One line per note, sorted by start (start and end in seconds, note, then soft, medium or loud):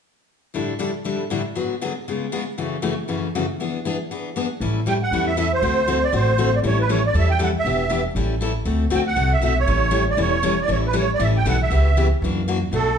0.54 0.72 A2 medium
0.54 0.72 D3 medium
0.54 0.72 G3 medium
0.54 0.73 D4 medium
0.54 0.73 E4 medium
0.54 0.73 A4 medium
0.79 0.89 A2 medium
0.79 0.90 D3 medium
0.79 0.90 G3 medium
0.79 0.90 D4 medium
0.79 0.90 E4 medium
0.79 0.90 A4 medium
1.04 1.23 A2 medium
1.04 1.23 D3 medium
1.04 1.23 G3 medium
1.04 1.23 D4 medium
1.04 1.23 E4 medium
1.04 1.23 A4 medium
1.30 1.40 A2 medium
1.30 1.41 D3 medium
1.30 1.41 G3 medium
1.30 1.41 D4 medium
1.30 1.41 E4 medium
1.30 1.41 A4 medium
1.55 1.74 G#2 medium
1.55 1.74 D3 medium
1.55 1.74 F#3 medium
1.55 1.74 B3 medium
1.55 1.74 F#4 medium
1.55 1.74 G#4 medium
1.81 1.91 G#2 medium
1.81 1.92 D3 medium
1.81 1.92 F#3 medium
1.81 1.92 B3 medium
1.81 1.92 F#4 medium
1.81 1.92 G#4 medium
2.08 2.25 C#3 medium
2.08 2.25 G#3 medium
2.08 2.25 B3 medium
2.08 2.26 F4 medium
2.08 2.26 G#4 medium
2.32 2.42 C#3 medium
2.32 2.42 G#3 medium
2.32 2.42 B3 medium
2.32 2.43 F4 medium
2.32 2.43 G#4 medium
2.58 2.76 F#2 soft
2.58 2.76 C#3 medium
2.58 2.76 E3 medium
2.58 2.76 A3 medium
2.58 2.76 C#4 medium
2.58 2.76 F#4 medium
2.82 2.93 F#2 medium
2.82 2.93 C#3 medium
2.82 2.93 E3 medium
2.82 2.93 A3 medium
2.82 2.93 C#4 medium
2.82 2.93 F#4 medium
3.08 3.26 F#2 medium
3.08 3.26 C#3 medium
3.08 3.27 E3 medium
3.08 3.27 A3 medium
3.08 3.27 C#4 medium
3.08 3.27 F#4 medium
3.35 3.45 F#2 medium
3.35 3.45 C#3 medium
3.35 3.45 E3 medium
3.35 3.45 A3 medium
3.35 3.45 C#4 medium
3.35 3.45 F#4 medium
3.60 3.78 E3 soft
3.60 3.78 B3 medium
3.60 3.78 D4 medium
3.60 3.78 G#4 medium
3.85 3.95 E3 medium
3.85 3.96 B3 medium
3.85 3.95 D4 medium
3.85 3.96 G#4 medium
4.11 4.29 E3 medium
4.11 4.29 B3 medium
4.11 4.29 D4 medium
4.11 4.29 G#4 medium
4.36 4.46 E3 medium
4.36 4.46 B3 medium
4.36 4.46 D4 medium
4.36 4.47 G#4 medium
4.60 5.01 A1 medium
4.60 4.79 E3 soft
4.60 4.79 G3 medium
4.60 4.79 C#4 medium
4.60 4.79 E4 medium
4.60 4.79 A4 medium
4.86 4.96 E3 medium
4.86 4.96 G3 medium
4.86 4.96 C#4 medium
4.86 4.97 E4 medium
4.86 4.97 A4 medium
4.86 4.94 G5 medium
5.03 5.25 F#5 medium
5.11 5.52 E2 medium
5.11 5.30 E3 medium
5.11 5.30 G3 medium
5.11 5.30 C#4 medium
5.11 5.30 E4 medium
5.11 5.30 A4 medium
5.27 5.37 E5 medium
5.37 5.47 E3 medium
5.37 5.47 G3 medium
5.37 5.47 C#4 medium
5.37 5.47 E4 medium
5.37 5.47 A4 medium
5.37 5.52 E5 medium
5.54 6.04 C5 medium
5.62 6.03 D2 medium
5.62 5.80 D3 medium
5.62 5.80 A3 medium
5.62 5.80 C4 medium
5.62 5.81 F#4 medium
5.62 5.81 A4 medium
5.87 5.98 D3 medium
5.87 5.98 A3 medium
5.87 5.98 C4 medium
5.87 5.98 F#4 medium
5.87 5.98 A4 medium
6.04 6.13 D5 medium
6.12 6.53 A1 medium
6.12 6.30 D3 medium
6.12 6.31 A3 medium
6.12 6.31 C4 medium
6.12 6.31 F#4 medium
6.12 6.31 A4 medium
6.12 6.55 C5 medium
6.38 6.48 D3 medium
6.38 6.49 A3 medium
6.38 6.49 C4 medium
6.38 6.48 F#4 medium
6.38 6.49 A4 medium
6.55 6.60 D5 medium
6.63 7.04 A1 medium
6.63 6.82 E3 medium
6.63 6.82 G3 medium
6.63 6.82 C#4 medium
6.63 6.82 E4 medium
6.63 6.82 A4 medium
6.67 6.79 C#5 medium
6.81 6.91 B4 medium
6.89 6.99 E3 medium
6.89 6.99 G3 medium
6.89 6.99 C#4 medium
6.89 6.99 E4 medium
6.89 7.00 A4 medium
6.89 7.03 C#5 medium
7.06 7.16 D5 medium
7.14 7.55 E2 medium
7.14 7.32 E3 medium
7.14 7.32 G3 medium
7.14 7.33 C#4 medium
7.14 7.33 E4 medium
7.14 7.33 A4 medium
7.18 7.30 E5 medium
7.30 7.40 G5 medium
7.39 7.50 E3 medium
7.39 7.49 G3 medium
7.39 7.50 C#4 medium
7.39 7.50 E4 medium
7.39 7.50 A4 medium
7.39 7.49 F#5 medium
7.59 8.04 E5 medium
7.65 8.05 E1 medium
7.65 7.83 E3 medium
7.65 7.83 B3 medium
7.65 7.84 D4 medium
7.65 7.84 G4 medium
7.90 8.00 E3 medium
7.90 8.00 B3 medium
7.90 8.00 D4 medium
7.90 8.01 G4 medium
8.15 8.56 A1 medium
8.15 8.34 E3 medium
8.15 8.34 G3 medium
8.15 8.34 C#4 medium
8.15 8.34 E4 medium
8.15 8.34 A4 medium
8.41 8.51 E3 medium
8.41 8.51 G3 medium
8.41 8.51 C#4 medium
8.41 8.51 E4 medium
8.41 8.52 A4 medium
8.65 8.86 D2 medium
8.65 8.84 D3 medium
8.65 8.84 A3 medium
8.65 8.84 C4 medium
8.65 8.84 F#4 medium
8.65 8.84 A4 medium
8.90 9.13 D2 medium
8.90 9.01 D3 medium
8.90 9.01 A3 medium
8.90 9.01 C4 medium
8.90 9.02 F#4 medium
8.90 9.02 A4 medium
8.95 9.00 G5 medium
9.07 9.33 F#5 medium
9.16 9.38 C2 medium
9.16 9.34 D3 medium
9.16 9.35 A3 medium
9.16 9.35 C4 medium
9.16 9.35 F#4 medium
9.16 9.35 A4 medium
9.33 9.42 E5 medium
9.41 9.63 B1 medium
9.41 9.52 D3 medium
9.41 9.52 A3 medium
9.41 9.53 C4 medium
9.41 9.53 F#4 medium
9.41 9.53 A4 medium
9.45 9.58 E5 medium
9.60 10.05 C#5 medium
9.66 10.07 A1 medium
9.66 9.85 E3 medium
9.66 9.86 G3 medium
9.66 9.86 C#4 medium
9.66 9.86 E4 medium
9.66 9.86 A4 medium
9.91 10.02 E3 medium
9.91 10.02 G3 medium
9.91 10.02 C#4 medium
9.91 10.02 E4 medium
9.91 10.02 A4 medium
10.10 10.19 D5 medium
10.17 10.58 E1 medium
10.17 10.36 E3 medium
10.17 10.36 G3 medium
10.17 10.36 C#4 medium
10.17 10.36 E4 medium
10.17 10.36 A4 medium
10.17 10.60 C#5 medium
10.43 10.53 E3 medium
10.43 10.53 G3 medium
10.43 10.53 C#4 medium
10.43 10.54 E4 medium
10.43 10.54 A4 medium
10.61 10.70 D5 medium
10.68 11.09 A1 medium
10.68 10.86 E3 medium
10.68 10.87 G3 medium
10.68 10.87 C#4 medium
10.68 10.87 E4 medium
10.68 10.87 A4 medium
10.72 10.78 C#5 medium
10.87 10.96 B4 medium
10.93 11.04 E3 medium
10.93 11.04 G3 medium
10.93 11.04 C#4 medium
10.93 11.04 E4 medium
10.93 11.04 A4 medium
10.99 11.11 C#5 medium
11.14 11.23 D5 medium
11.19 11.41 A1 medium
11.19 11.38 E3 medium
11.19 11.38 G3 medium
11.19 11.38 C#4 medium
11.19 11.38 E4 medium
11.19 11.38 A4 medium
11.19 11.28 E5 medium
11.37 11.46 G5 medium
11.45 11.67 B1 medium
11.45 11.55 E3 medium
11.45 11.55 G3 medium
11.45 11.55 C#4 medium
11.45 11.56 E4 medium
11.45 11.56 A4 medium
11.45 11.61 F#5 medium
11.63 12.08 E5 medium
11.70 12.11 C#2 medium
11.70 11.88 C#3 medium
11.70 11.89 E3 medium
11.70 11.89 B3 medium
11.70 11.89 C#4 medium
11.70 11.89 G4 medium
11.97 12.06 C#3 medium
11.97 12.06 E3 medium
11.97 12.06 B3 medium
11.97 12.07 C#4 medium
11.97 12.07 G4 medium
12.22 12.62 F#2 medium
12.22 12.40 E3 medium
12.22 12.41 A#3 medium
12.22 12.41 D4 medium
12.22 12.41 F#4 medium
12.48 12.57 E3 medium
12.48 12.57 A#3 medium
12.48 12.57 D4 medium
12.48 12.58 F#4 medium
12.71 12.98 B1 medium
12.71 12.90 B2 medium
12.71 12.90 F#3 medium
12.71 12.90 A3 medium
12.71 12.91 D4 medium
12.71 12.91 F#4 medium
12.71 12.98 A4 medium